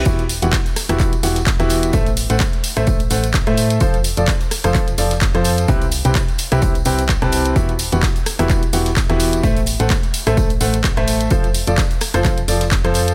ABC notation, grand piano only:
X:1
M:4/4
L:1/16
Q:"Swing 16ths" 1/4=128
K:Em
V:1 name="Grand piano"
[E,B,EFGe] z2 [E,B,EFGf] z3 [E,B,EFGe]2 z [E,B,EFGf] z2 [E,B,EFGe]3 | [A,Ace] z2 [A,Acf] z3 [A,Ace]2 z [A,Acf] z2 [A,Ace]3 | [=F,=FAc] z2 [F,FAd] z3 [F,FAc]2 z [F,FAd] z2 [F,FAc]3 | [C,CEGBe] z2 [C,CEGBg] z3 [C,CEGBe]2 z [C,CEGBg] z2 [C,CEGBa]3 |
[E,B,EFGe] z2 [E,B,EFGf] z3 [E,B,EFGe]2 z [E,B,EFGf] z2 [E,B,EFGe]3 | [A,Ace] z2 [A,Acf] z3 [A,Ace]2 z [A,Acf] z2 [A,Ace]3 | [=F,=FAc] z2 [F,FAd] z3 [F,FAc]2 z [F,FAd] z2 [F,FAc]3 |]